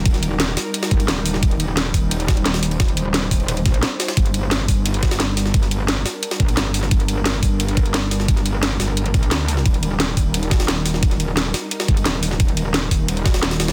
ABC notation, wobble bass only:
X:1
M:4/4
L:1/8
Q:1/4=175
K:Eblyd
V:1 name="Wobble bass" clef=bass
E,,,3 z2 G,,, E,,,2 | E,,,3 E,,,4- E,,, | E,,,3 E,,,2 B,,, z2 | G,,,3 G,,,4- G,,, |
G,,,3 z2 B,,, G,,,2 | G,,,3 G,,,4- G,,, | G,,,3 G,,,2 B,,, D,,2 | E,,,3 E,,,4- E,,, |
E,,,3 z2 G,,, E,,,2 | E,,,3 E,,,4- E,,, |]